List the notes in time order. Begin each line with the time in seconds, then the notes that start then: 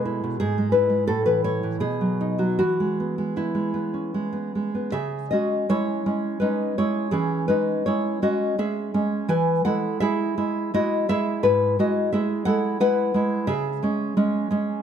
Already playing: B2 G#3 A3
0.05 E4
0.24 B2
0.40 G#2 G#4
0.58 G#3
0.72 E4 B4
0.89 G#3
1.07 A2 A4
1.26 E3 B4
1.44 E4 C#5
1.63 E3
1.80 B2 G#4
2.01 F#3
2.21 D#4
2.38 F#3 F#4
2.59 E3 F#4
2.80 G#3
3.00 B3
3.18 G#3
3.36 B3 E4
3.55 G#3
3.74 B3
3.94 C#4
4.14 G#3
4.33 B3
4.55 G#3
4.75 B3
4.92 C#3 G#4 E5
5.31 G#3 C#4 F#4 D#5
5.69 G#3 C#4 E4 C#5
6.06 G#3 C#4
6.40 G#3 C#4 D#4 B4
6.78 G#3 C#4 E4 C#5
7.11 E3 C#4 G#4
7.48 G#3 C#4 D#4 B4
7.86 G#3 C#4 E4 C#5
8.22 G#3 C#4 F#4 D#5
8.58 G#3 C#4 G#4 E5
8.94 G#3 C#4
9.28 E3 B4 G#5
9.65 G#3 E4 A4 F#5
10.00 G#3 E4 G#4 E5
10.38 G#3 E4
10.74 G#3 E4 F#4 D#5
11.09 G#3 E4 G#4 E5
11.43 G#2 E4 B4
11.79 G#3 E4 F#4 D#5
12.12 G#3 E4 G#4 E5
12.45 G#3 E4 A4 F#5
12.80 G#3 E4 B4 F#5
13.14 G#3 E4
13.47 C#3 G#4 E5
13.83 G#3 C#4
14.17 G#3 C#4
14.51 G#3 C#4